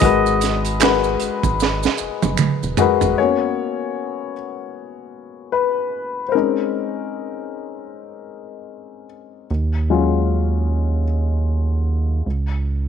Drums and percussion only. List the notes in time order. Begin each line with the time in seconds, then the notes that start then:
0.01 kick, closed hi-hat
0.26 maracas
0.41 snare, closed hi-hat, maracas
0.65 closed hi-hat, maracas
0.80 finger snap, snare, clap, closed hi-hat, maracas
1.04 maracas
1.20 closed hi-hat, maracas
1.43 kick, maracas
1.60 snare, maracas
1.83 snare, maracas
1.98 maracas
2.22 high tom, maracas
2.38 finger snap, mid tom, maracas
2.63 maracas
2.77 floor tom, maracas
3.01 floor tom, maracas